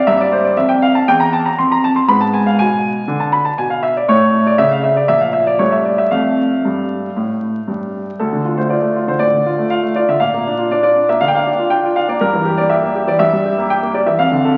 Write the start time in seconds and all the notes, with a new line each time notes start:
0.07 G2 A#3 E5
0.21 D5
0.32 C5
0.44 D5
0.57 F2 E5
0.69 G5
0.82 F5
0.95 A5
1.08 E2 G5
1.20 A#5
1.33 A5
1.45 A#5
1.59 F2 C6
1.72 A#5
1.84 A5
1.96 C6
2.08 G#2 B3 B5
2.21 A5
2.33 G#5
2.46 F5
2.59 B2 G#5
3.08 D3
3.20 A5
3.32 B5
3.45 A5
3.58 B2 G#5
3.70 F5
3.83 E5
3.97 D5
4.08 A2 A3 C#5
4.47 D5
4.58 C#3 E5
4.71 F5
4.84 E5
4.96 D5
5.08 A#2 F3 E5
5.21 F5
5.33 E5
5.47 D5
5.59 G2 A3 C#5
5.72 E5
5.85 D5
5.98 E5
6.11 F2 A3 F5
6.65 G2
7.16 A2
7.68 G2
8.19 D2 A4
8.33 D3
8.45 F4
8.57 A3 C5
8.69 F4 D5
8.82 A3
8.96 F4
9.07 D3 C5
9.19 A2 D5
9.33 D3
9.46 F4
9.58 A3
9.70 F4 F5
9.83 A3
9.96 F4 D5
10.08 D3 E5
10.20 A#2 F5
10.34 A#3
10.46 D4
10.58 F4
10.71 D4 D5
10.83 F4 D5
10.96 D4
11.09 A#3 E5
11.21 D3 F5
11.28 G5
11.34 A#3 F5
11.46 D4
11.59 F4
11.70 D4 G5
11.83 F4
11.96 D4 F5
12.08 A#3 D5
12.21 G2 A#4
12.33 E3
12.45 G4
12.57 A#3 D5
12.69 G4 E5
12.83 A#3
12.95 G4
13.07 E3 D5
13.19 G2 E5
13.32 G3
13.45 G4
13.58 A#3
13.70 G4 G5
13.83 A#3
13.94 G4 D5
14.06 E3 E5
14.19 F2 F5
14.31 D3
14.45 A4